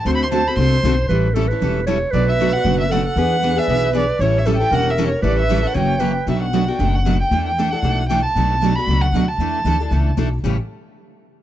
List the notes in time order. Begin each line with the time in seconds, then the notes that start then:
0.05 D2 D3 A3 C4 F#4 A4 C5 C6
0.15 B5
0.23 C6
0.31 D3 A3 C4 F#4 A4 A5
0.47 C4 F#4 A4 B5
0.56 C2 D3 A3 C4 F#4 A4 C6
0.83 B1 D3 A3 C4 F#4 A4
1.09 A1 E3 G3 C#4 E4 A4 B4
1.34 E3 G3 C#4 E4 A4
1.48 E4 A4 B4
1.53 C#4
1.62 E1 E3 G3 C#4 E4 A4
1.86 E3 G3 C#4 E4 A4 C#5
2.11 B1 B2 F#3 A3 D4 B4 D5
2.15 F#4
2.28 E5
2.41 B2 F#3 A3 D4 F#4 B4
2.53 F#4 F#5
2.57 A3 D4
2.64 F#1 B2 F#3 A3 D4 F#4 B4
2.80 E5
2.90 B2 F#3 A3 D4 F#4 A4 B4 F#5
3.06 F#5
3.16 E2 E3 B3 D4 G#4 B4
3.43 E3 B3 D4 G#4 B4
3.56 B3 D4 G#4 E5
3.68 B1 E3 B3 D4 G#4 B4
3.93 E3 B3 D4 G#4 B4 D5
4.19 A1 E3 G3 C#4 E4 A4 C#5
4.38 E5
4.46 E3 G3 C#4 E4 A4
4.57 A4 G5
4.61 C#4 E4
4.71 E1 E3 G3 C#4 E4 A4 A#4 F#5
4.90 E5
4.98 E3 G3 C#4 E4 A4
5.08 C#5
5.22 A1 E3 G3 C#4 E4 A4 B4 D5
5.40 E5
5.49 E3 G3 C#4 E4 A4
5.62 C#4 E4 A4
5.67 F#5
5.74 F#1 C#3 E3 F#3 A#3 C#4 E4 F#4 A#4 C#5
5.78 G5
5.99 C#3 E3 F#3 A#3 C#4 E4 F#4 A#4 B4
6.26 B1 B2 F#3 A3 D4 F#4 B4 E5
6.43 F#5
6.53 B2 F#3 A3 D4 F#4 B4
6.68 A3 D4 F#4 G5
6.79 F#1 B2 F#3 A3 D4 F#4 B4
6.95 F#5
7.05 B2 F#3 A3 D4 F#4 B4
7.20 G5
7.31 E2 E3 A3 D4 E4 A4
7.46 G5
7.58 E3 A3 D4 E4 A4
7.71 D4 E4 A4 F#5
7.83 B1 E3 A3 D4 E4 A4
8.09 E3 A3 D4 E4 A4 G5
8.23 A5
8.35 B1 B2 F#3 A3 D4 F#4 B4
8.62 B2 F#3 A3 D4 F#4 B4
8.75 A3 D4 F#4 B5
8.87 C#2 B2 F#3 A3 D4 F#4 B4
9.01 F#5
9.12 D2 B2 F#3 A3 B4
9.16 D4 F#4
9.28 A5
9.38 E2 E3 A3 D4 E4 A4
9.64 D2 E3 A3 D4 E4 A4
9.80 D4 E4 A4
9.91 C#2 E3 A3 D4 E4 A4
10.17 B1 E3 A3 D4 E4 A4
10.44 A1 A2 C#3 E3 G3 A3 C#4 E4 G4 A4